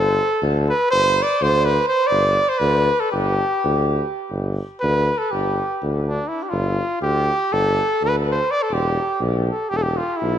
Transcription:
Already playing: tuba G1, cornet A4
0.42 tuba D2
0.69 cornet B4
0.91 tuba G1, cornet C5
1.22 cornet D5
1.42 tuba D2, cornet C5
1.65 cornet B4
1.88 cornet C5
2.07 tuba G1, cornet D5
2.49 cornet C5
2.58 tuba D2, cornet B4
3.00 cornet A4
3.12 tuba G1, cornet G4
3.64 tuba D2
4.31 tuba G1
4.80 tuba D2, cornet B4
5.18 cornet A4
5.31 tuba G1, cornet G4
5.83 tuba D2
6.07 cornet D4
6.28 cornet E4
6.43 cornet G4
6.49 tuba G1, cornet F4
7.02 tuba D2, cornet G4
7.52 tuba G1, cornet A4
8.02 tuba D2, cornet B4
8.31 cornet C5
8.51 cornet D5
8.62 cornet A4
8.70 tuba E1, cornet G4
9.21 tuba B1
9.50 cornet A4
9.70 tuba E1, cornet G4
9.77 cornet A4
9.82 cornet G4
9.97 cornet F4
10.17 cornet E4
10.22 tuba B1

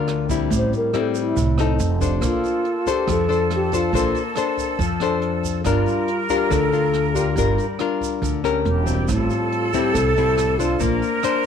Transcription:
Already playing: upright bass D2, nylon-string guitar D3 D4 F4 A#4
0.08 cross-stick, closed hi-hat
0.29 nylon-string guitar G3 C4 E4, kick, closed hi-hat, shaker
0.50 upright bass A1, nylon-string guitar A2, kick, closed hi-hat, shaker
0.57 alto flute C5
0.73 alto flute A#4, closed hi-hat, shaker
0.94 nylon-string guitar G3 C4 E4, cross-stick, closed hi-hat
0.99 alto flute A4
1.15 alto flute E4, closed hi-hat, shaker
1.36 upright bass C2, nylon-string guitar A2, kick, closed hi-hat, shaker
1.58 nylon-string guitar C4 D#4 A4, cross-stick, closed hi-hat, shaker
1.79 upright bass F1, closed hi-hat, shaker
2.01 nylon-string guitar D4 A4 C5, kick, closed hi-hat, shaker
2.21 upright bass A#1, nylon-string guitar A#3, flute section A4, kick, cross-stick, closed hi-hat, shaker
2.25 alto flute F4
2.43 closed hi-hat, shaker
2.65 closed hi-hat
2.86 nylon-string guitar D4 A4 C5, alto flute G4, kick, closed hi-hat, shaker
3.07 upright bass F2, nylon-string guitar F3, kick, cross-stick, closed hi-hat, shaker
3.12 alto flute A4
3.29 nylon-string guitar D4 A4 C5, closed hi-hat, shaker
3.50 cross-stick, closed hi-hat
3.55 alto flute G4
3.71 nylon-string guitar D4 A4 C5, alto flute F4, kick, closed hi-hat, shaker
3.93 upright bass A#1, nylon-string guitar A#3 D4 A4 C5, kick, closed hi-hat, shaker
4.14 closed hi-hat, shaker
4.35 nylon-string guitar D4 A4 C5, cross-stick, closed hi-hat, shaker
4.57 kick, closed hi-hat, shaker
4.79 upright bass F2, nylon-string guitar F3, kick, closed hi-hat, shaker
5.00 nylon-string guitar D4 A4 C5, cross-stick, closed hi-hat, shaker
5.22 closed hi-hat
5.43 kick, closed hi-hat, shaker
5.64 upright bass G1, nylon-string guitar G3 D4 F4 A#4, alto flute F4, flute section A#4, kick, cross-stick, closed hi-hat, shaker
5.86 closed hi-hat, shaker
6.08 closed hi-hat
6.29 nylon-string guitar D4 F4 A#4, alto flute G4, kick, closed hi-hat, shaker
6.50 upright bass D2, nylon-string guitar D3, alto flute A4, kick, cross-stick, closed hi-hat, shaker
6.72 nylon-string guitar D4 F4, closed hi-hat, shaker
6.93 cross-stick, closed hi-hat
7.15 nylon-string guitar D4 F4 A#4, alto flute G4, kick, closed hi-hat, shaker
7.36 upright bass G1, nylon-string guitar G3 D4 F4 A#4, kick, closed hi-hat, shaker
7.58 closed hi-hat, shaker
7.79 nylon-string guitar D4 F4 A#4, cross-stick, closed hi-hat
8.01 kick, closed hi-hat, shaker
8.22 upright bass D2, nylon-string guitar D3, kick, closed hi-hat, shaker
8.44 nylon-string guitar C#4 G4 A#4, cross-stick, closed hi-hat, shaker
8.65 upright bass E1, flute section G4, closed hi-hat
8.86 nylon-string guitar G3 C4, kick, closed hi-hat, shaker
9.08 upright bass A1, nylon-string guitar A2, alto flute F4, flute section A4, kick, cross-stick, closed hi-hat, shaker
9.30 closed hi-hat, shaker
9.52 closed hi-hat
9.73 nylon-string guitar G3 C4 E4, alto flute G4, kick, closed hi-hat, shaker
9.94 upright bass C2, nylon-string guitar A2, alto flute A4, kick, cross-stick, closed hi-hat, shaker
10.16 nylon-string guitar G3 C4 E4, closed hi-hat, shaker
10.37 cross-stick, closed hi-hat, shaker
10.58 nylon-string guitar D4 C5, alto flute F4, kick, closed hi-hat, shaker
10.80 upright bass A#1, nylon-string guitar A#3, flute section A#4, kick, closed hi-hat, shaker
11.02 closed hi-hat, shaker
11.23 nylon-string guitar D4 C5, cross-stick, closed hi-hat, shaker

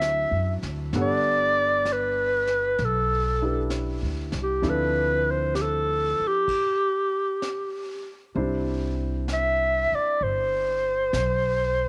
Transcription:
Already playing: upright bass D2, grand piano F#3 C4 D4 E4 A4, clarinet E5
0.01 brush sweep, snare, hi-hat pedal
0.31 upright bass F#2
0.62 upright bass D2, snare
0.93 upright bass G1, grand piano G3 B3 D4 A4 F#5, brush sweep, snare
1.01 clarinet D5
1.85 brush sweep, snare, hi-hat pedal
1.92 clarinet B4
2.47 snare
2.78 upright bass B1, brush sweep, snare
2.84 clarinet A4
3.42 grand piano D4 E4 G4 B4
3.70 brush sweep, snare, hi-hat pedal
4.02 upright bass D2
4.32 upright bass C2, snare
4.43 clarinet G4
4.62 upright bass D2, grand piano F3 C4 D4 E4 A4, brush sweep, snare
4.69 clarinet B4
5.31 clarinet C5
5.55 clarinet G4, brush sweep, snare, hi-hat pedal
5.61 clarinet A4
6.20 muted upright bass stroke
6.27 clarinet G4
6.48 brush sweep, kick, crash
7.42 brush sweep, snare, hi-hat pedal
8.35 upright bass C2, grand piano G3 C4 D4 E4 C5, brush sweep
9.28 brush sweep, snare, hi-hat pedal
9.33 clarinet E5
9.92 clarinet D5, muted upright bass stroke
10.21 upright bass G1, clarinet C5, brush sweep
11.13 upright bass B1, brush sweep, snare, hi-hat pedal

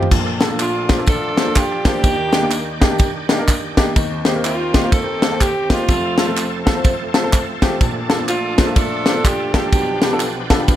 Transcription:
0.03 floor tom
0.11 upright piano A#1 A#2, tonewheel organ F3 D4 A4, kick, crash, tambourine
0.40 upright piano A#3 D4 F4 A4, snare, ride, tambourine
0.50 upright piano A#3 D4 F4 A4
0.59 saxophone section A3 D4 F4, clap, ride, tambourine
0.89 upright piano A#3 D4 F4 C5, kick, snare, ride, tambourine
0.98 upright piano A#3 D4 F4 A4
1.06 saxophone section D4 F4 A4, kick, ride, tambourine
1.37 upright piano A#3 D4 F4 C5, snare, ride, tambourine
1.47 upright piano A#3 D4 F4 A4
1.56 saxophone section G4, kick, clap, ride, tambourine
1.85 upright piano A#3 D4 F4 C5, saxophone section A#3 D4 G4, kick, snare, ride, tambourine
2.04 upright piano D#2 D#3, tonewheel organ D#3 D4 G4, kick, ride, tambourine
2.32 upright piano A#3 D4 D#4 G4, snare, ride, tambourine
2.42 upright piano A#3 D4 D#4 G4
2.51 clap, ride, tambourine
2.81 upright piano A#3 D4 D#4 G4, kick, snare, ride, tambourine
2.90 upright piano A#3 D4 D#4 G4
2.98 kick, ride, tambourine
3.29 upright piano A#3 D4 D#4 G4, snare, ride, tambourine
3.38 upright piano A#3 D4 D#4 A#4
3.48 kick, clap, ride, tambourine
3.77 upright piano A#3 D4 D#4 G4, kick, snare, ride, tambourine
3.96 upright piano D#2 D#3, tonewheel organ C4, kick, ride, tambourine
4.25 upright piano A#3 C4 D#4 G4, snare, ride, tambourine
4.35 upright piano A#3 C4 D#4 A#4
4.44 saxophone section A#3 C4 F4, clap, ride, tambourine
4.74 upright piano A#3 C4 D#4 G4, kick, snare, ride, tambourine
4.83 upright piano A#3 C4 D#4 F4
4.92 saxophone section C4 A4, kick, ride, tambourine
5.22 upright piano A#3 C4 D#4 A4, snare, ride, tambourine
5.31 upright piano A#3 C4 D#4 A4
5.41 saxophone section G4, kick, clap, ride, tambourine
5.70 saxophone section A3 C4 F4, upright piano A#3 C4 D#4 G4, kick, snare, ride, tambourine
5.88 upright piano F1 F2, tonewheel organ F3 A3 C4 A4, kick, ride, tambourine
6.17 upright piano A3 C4 F4 A4, snare, ride, tambourine
6.27 upright piano A3 C4 F4 A4
6.36 clap, ride, tambourine
6.65 upright piano A3 C4 F4 A4, kick, snare, ride, tambourine
6.75 upright piano A3 C4 F4 C5
6.84 kick, ride, tambourine
7.14 upright piano A3 C4 F4 A4, snare, ride, tambourine
7.23 upright piano A3 C4 F4 A4
7.33 kick, clap, ride, tambourine
7.62 upright piano A3 C4 F4 G4, kick, snare, ride, tambourine
7.80 upright piano A#1 A#2, tonewheel organ F3 A3 D4, kick, ride, tambourine
8.09 upright piano A#3 D4 F4 A4, snare, ride, tambourine
8.19 upright piano A#3 D4 F4 C5
8.28 saxophone section A3 D4 F4, clap, ride, tambourine
8.57 upright piano A#3 D4 F4 C5, kick, snare, ride, tambourine
8.66 upright piano A#3 D4 F4 A4
8.76 saxophone section D4 F4 A4, kick, ride, tambourine
9.06 upright piano A#3 D4 F4 C5, snare, ride, tambourine
9.15 upright piano A#3 D4 F4 A4
9.25 saxophone section G4, kick, clap, ride, tambourine
9.54 upright piano A#3 D4 F4 A4, saxophone section D4 G4, kick, snare, ride, tambourine
9.72 upright piano B1 B2, tonewheel organ B2 F3 B3 G4, kick, ride, tambourine
10.02 upright piano B3 D4 F4 G4, snare, ride, tambourine
10.12 upright piano B3 D4 F4 A4
10.20 clap, ride, tambourine
10.50 upright piano B3 D4 F4 A4, kick, snare, ride, tambourine
10.59 upright piano B3 D4 F4 G4
10.68 kick, ride, tambourine

